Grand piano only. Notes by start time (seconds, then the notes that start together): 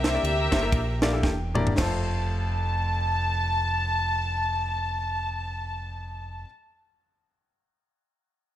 Already playing: C3
0.04 A#3 D4 E4 G4 C5
0.14 A#3 D4 E4 G4 D5
0.51 A#3 D4 E4 G4 C5
0.62 A#3 D4 E4 G4 A#4
1.02 A#3 D4 E4 G4 D5 F5
1.13 A#3 D4 E4 G4 A4
1.24 G5
1.54 A#3 D4 E4 G4 D5 A#5
1.76 F2 A3 C4 F4 C5